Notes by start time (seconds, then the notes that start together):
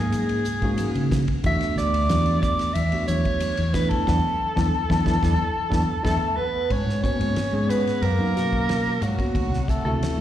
Already playing: G#2 A#3 C#4 D#4 G#4
0.12 hi-hat pedal, ride, muted conga, high conga
0.18 G#4
0.29 ride
0.45 hi-hat pedal, muted conga, low conga
0.62 G#2 A#3 C#4 D#4 F#4, kick, ride
0.78 hi-hat pedal, ride, high conga
0.95 C#3, ride
1.11 kick, snare, hi-hat pedal, muted conga
1.28 kick, ride
1.43 E2 A3 B3 D4 F#4 E5, kick, hi-hat pedal, ride, muted conga
1.61 muted fingered electric bass stroke, snare, ride
1.76 D2 D5, snare, hi-hat pedal
1.94 ride
2.09 E2 A3 B3 D4 F#4, snare, hi-hat pedal, ride, high conga
2.26 ride
2.42 D5, kick, snare, hi-hat pedal
2.59 snare, ride
2.74 E2 E5, hi-hat pedal, ride, muted conga
2.92 A3 B3 D4 F#4, ride
3.07 E2 C#5, hi-hat pedal, muted conga, high conga
3.25 kick, ride
3.40 muted fingered electric bass stroke, hi-hat pedal, ride, high conga
3.57 E2, ride
3.73 A3 B3 D4 E4 B4, kick, snare, hi-hat pedal, muted conga
3.90 A4, kick, ride
4.07 E2 B3 D4 E4, kick, snare, high conga
4.56 E2 B3 D4 E4, kick, snare, high conga
4.89 E2 B3 D4 E4, kick, snare, high conga
5.05 E2 B3 D4 E4, kick, snare, high conga
5.22 E2 B3 D4 E4, kick, snare, high conga
5.70 E2 B3 D4 E4, kick, snare, high conga
6.03 E2 A3 B3 D4 E4 A4, kick, snare, high conga
6.37 B3 B4
6.70 G#2 C#4 C#5, kick, ride
6.87 G#2, snare
7.02 A#3 B3 C#4 F#4 C#5, kick, hi-hat pedal, ride
7.19 G#2, ride
7.36 snare, ride
7.52 G#2 G#3 B3 C#4 G#4
7.69 B3 B4, hi-hat pedal, ride
7.87 snare, ride
8.02 F#2 A#3 A#4, ride
8.18 F#3 A#3 B3 C#4 D#4
8.35 B2 A#3 C#4 F#4, snare, hi-hat pedal, ride
8.53 kick
8.69 snare, ride
9.01 G#2 F#3 F#4, hi-hat pedal, ride
9.18 A#3 B3 C#4 F#4, kick, ride
9.35 D2, kick, ride
9.50 C2, snare
9.68 A3 A4, kick, hi-hat pedal, ride
9.85 D2 A3 C4 E4 F#4 A4
10.01 muted fingered electric bass stroke, snare, ride
10.17 D2